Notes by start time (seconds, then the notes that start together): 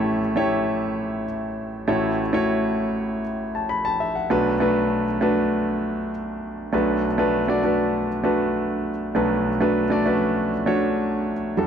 Already playing: A1 A2 A3 E4 G4 C#5
0.36 A3 E4 G4 C#5
1.88 A1 A2 A3 E4 F#4 C#5
2.33 A3 E4 F#4 C#5
3.55 A5
3.69 B5
3.85 A5
4.00 E5
4.15 F#5
4.30 B1 B2 A3 D4 F#4 B4
4.60 A3 D4 F#4 B4
5.21 A3 D4 F#4 B4
6.73 B1 B2 A3 D4 F#4 B4
7.18 A3 D4 F#4 B4
7.48 A3 D4 F#4 D5
7.64 A3 D4 F#4 B4
8.24 A3 D4 F#4 B4
9.15 B1 B2 A3 D4 F#4 B4
9.61 A3 D4 F#4 B4
9.90 A3 D4 F#4 D5
10.06 A3 C#4 F#4 B4
10.13 D4
10.66 A3 D4 F#4 C#5
11.57 E2 E3 G3 D4 F#4 A4